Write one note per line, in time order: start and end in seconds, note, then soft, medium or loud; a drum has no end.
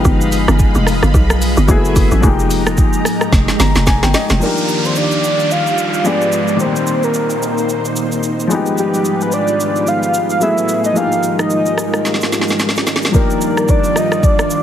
0.00 1.63 F3 medium
0.00 1.64 G#3 medium
0.00 1.67 G#3 medium
0.00 1.65 B3 medium
0.00 1.66 D#4 medium
0.00 1.67 G4 medium
0.00 1.65 D#5 medium
0.00 1.67 F5 medium
0.00 2.21 B5 medium
0.05 0.47 G1 loud
0.05 kick loud
0.05 shaker medium
0.21 shaker medium
0.32 open hi-hat medium
0.32 shaker medium
0.48 0.74 G1 loud
0.48 cross-stick loud
0.48 shaker soft
0.59 kick medium
0.59 shaker medium
0.75 1.02 F1 medium
0.75 shaker medium
0.87 cross-stick medium
0.87 open hi-hat medium
0.87 shaker medium
1.03 1.14 G1 medium
1.03 cross-stick medium
1.03 shaker soft
1.14 1.56 B1 loud
1.14 kick loud
1.14 shaker medium
1.30 cross-stick loud
1.30 shaker medium
1.42 open hi-hat medium
1.42 shaker loud
1.57 1.68 G1 medium
1.57 shaker medium
1.67 1.95 F#1 loud
1.67 2.23 F#3 medium
1.67 1.76 G#3 medium
1.67 2.23 A3 medium
1.67 2.23 B3 medium
1.67 2.24 E4 medium
1.67 2.24 G#4 medium
1.67 2.23 E5 medium
1.67 2.23 G#5 medium
1.67 kick loud
1.67 shaker medium
1.75 2.26 A3 medium
1.85 shaker medium
1.96 2.11 F#1 medium
1.96 kick loud
1.96 open hi-hat medium
1.96 shaker loud
2.11 2.23 A1 medium
2.11 shaker medium
2.20 3.01 F1 loud
2.20 4.36 F3 medium
2.20 4.37 G#3 medium
2.20 4.39 G#3 medium
2.20 4.38 A#3 medium
2.20 4.39 D#5 medium
2.20 4.39 G5 medium
2.20 4.39 A#5 medium
2.20 kick loud
2.20 shaker medium
2.26 4.39 D#4 medium
2.26 4.40 G4 medium
2.40 shaker medium
2.51 open hi-hat medium
2.51 shaker medium
2.67 cross-stick medium
2.67 shaker medium
2.77 kick medium
2.77 shaker medium
2.93 shaker medium
3.05 cross-stick medium
3.05 open hi-hat medium
3.05 shaker medium
3.21 cross-stick medium
3.21 shaker soft
3.32 3.48 F1 loud
3.32 kick loud
3.32 snare medium
3.32 shaker medium
3.48 snare medium
3.48 shaker medium
3.60 3.75 G1 medium
3.60 3.85 A#5 medium
3.60 snare medium
3.60 open hi-hat medium
3.60 shaker loud
3.75 3.86 F1 medium
3.75 snare medium
3.75 shaker medium
3.87 4.02 F1 loud
3.87 4.02 G#5 medium
3.87 kick loud
3.87 snare loud
3.87 shaker medium
4.03 4.14 G1 medium
4.03 4.14 G5 medium
4.03 snare medium
4.03 shaker medium
4.14 4.40 D#5 medium
4.14 snare loud
4.14 open hi-hat medium
4.14 shaker loud
4.29 4.41 F1 medium
4.29 snare loud
4.29 shaker medium
4.38 6.03 D#3 medium
4.38 6.00 F3 medium
4.38 6.01 A#3 medium
4.38 6.02 D4 medium
4.38 6.58 G4 medium
4.38 6.04 D5 medium
4.38 6.04 F5 medium
4.38 downlifter medium
4.38 shaker medium
4.43 6.03 D#4 medium
4.43 6.04 G4 medium
4.43 4.87 A#4 loud
4.58 shaker medium
4.69 shaker medium
4.85 4.99 C5 medium
4.85 shaker soft
4.96 5.53 D5 loud
4.96 shaker medium
5.11 shaker medium
5.24 shaker medium
5.39 shaker soft
5.51 5.94 F5 loud
5.51 shaker medium
5.67 shaker soft
5.78 shaker medium
5.94 6.08 F5 loud
5.94 shaker medium
6.04 6.59 F3 medium
6.04 6.59 G#3 medium
6.04 6.60 B3 medium
6.04 6.60 D4 medium
6.04 6.59 F4 medium
6.04 6.61 G4 medium
6.04 6.59 B4 medium
6.04 6.49 D5 loud
6.04 shaker medium
6.21 shaker medium
6.32 shaker medium
6.48 6.59 D5 medium
6.48 shaker medium
6.56 8.45 D#3 medium
6.56 8.46 G3 medium
6.56 8.48 A#3 medium
6.56 8.47 A#3 medium
6.56 10.37 D#4 medium
6.56 8.48 C5 medium
6.56 shaker medium
6.61 8.48 C4 medium
6.61 8.49 G4 medium
6.61 7.05 C5 loud
6.76 shaker medium
6.87 shaker medium
7.03 7.85 A#4 medium
7.03 shaker soft
7.14 shaker medium
7.30 shaker medium
7.42 shaker medium
7.58 shaker soft
7.69 shaker medium
7.85 shaker soft
7.96 shaker loud
8.12 shaker medium
8.23 shaker medium
8.40 shaker medium
8.47 10.36 F3 medium
8.47 10.37 G#3 medium
8.47 10.39 G#3 medium
8.47 10.38 B3 medium
8.47 10.40 F4 medium
8.47 10.39 G4 medium
8.47 10.94 B4 medium
8.47 shaker medium
8.53 10.39 D#4 medium
8.53 10.40 G4 medium
8.66 shaker medium
8.78 9.24 G4 loud
8.78 shaker medium
8.94 shaker medium
9.05 shaker medium
9.21 9.33 B4 medium
9.21 shaker soft
9.32 9.90 D5 loud
9.32 shaker medium
9.48 shaker medium
9.60 shaker medium
9.76 shaker soft
9.87 10.31 F5 loud
9.87 shaker medium
10.03 shaker soft
10.14 shaker loud
10.30 10.41 F5 loud
10.30 shaker medium
10.40 10.95 F#3 medium
10.40 10.96 A3 medium
10.40 10.95 A3 medium
10.40 10.96 B3 medium
10.40 10.95 E4 medium
10.40 10.97 E4 medium
10.40 10.95 F#4 medium
10.40 10.95 G#4 medium
10.40 10.97 G#4 medium
10.40 10.82 E5 loud
10.40 shaker medium
10.58 shaker medium
10.69 shaker medium
10.84 10.96 D#5 loud
10.84 shaker soft
10.93 13.08 F3 medium
10.93 13.09 G#3 medium
10.93 13.12 G#3 medium
10.93 13.10 A#3 medium
10.93 13.12 D#4 medium
10.93 13.12 F4 medium
10.93 13.12 G4 medium
10.93 13.12 A#4 medium
10.93 shaker medium
10.97 13.11 D#4 medium
10.97 13.12 G4 medium
10.97 11.37 F5 loud
11.12 shaker medium
11.23 shaker medium
11.39 12.17 D#5 medium
11.39 cross-stick medium
11.39 shaker soft
11.50 shaker medium
11.66 shaker medium
11.78 cross-stick medium
11.78 shaker medium
11.94 cross-stick medium
11.94 shaker soft
12.05 snare soft
12.05 shaker medium
12.14 snare soft
12.21 snare medium
12.21 shaker soft
12.32 snare medium
12.32 shaker loud
12.41 snare medium
12.48 snare medium
12.48 shaker medium
12.59 snare medium
12.59 shaker medium
12.69 snare medium
12.76 snare medium
12.76 shaker medium
12.87 snare medium
12.87 shaker medium
12.96 snare medium
13.02 snare medium
13.02 shaker medium
13.11 14.63 D#3 medium
13.11 14.63 F3 medium
13.11 14.63 G3 medium
13.11 14.63 A#3 medium
13.11 14.63 D4 medium
13.11 14.63 F4 medium
13.11 13.71 A#4 loud
13.11 14.63 D5 medium
13.11 kick loud
13.11 shaker medium
13.16 14.63 D#4 medium
13.16 14.63 G4 medium
13.30 shaker medium
13.41 shaker medium
13.57 cross-stick medium
13.57 shaker soft
13.68 13.99 D5 loud
13.68 kick medium
13.68 shaker medium
13.84 shaker medium
13.96 14.26 D#5 loud
13.96 cross-stick medium
13.96 shaker medium
14.12 cross-stick medium
14.12 shaker soft
14.23 14.63 D5 loud
14.23 kick loud
14.23 shaker medium
14.39 cross-stick loud
14.39 shaker soft
14.50 shaker loud